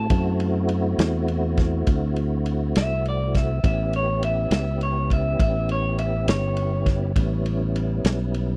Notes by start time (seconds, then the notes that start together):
Already playing: A5
0.10 F#2 A3 C4 E4 F#4, kick, ride
0.40 ride
0.69 ride
0.98 E2, snare, ride
1.28 ride
1.57 kick, snare, ride
1.87 D2, kick, ride
2.16 ride
2.46 ride
2.75 C2 E5, snare, ride
3.05 D5, ride
3.35 E5, kick, snare, ride
3.63 A1 B3 C#4 E4 G4 E5, kick, ride
3.93 C#5, ride
4.23 E5, ride
4.51 C#2 E5, snare, ride
4.81 C#5, ride
5.10 E5, kick, ride
5.39 A1 E5, kick, ride
5.69 C#5, ride
5.98 E5, ride
6.28 G1 C#5, snare, ride
6.57 ride
6.86 kick, snare, ride
7.16 A1 G3 B3 C#4 E4, kick, ride
7.46 ride
7.76 ride
8.04 B1, snare, ride
8.34 ride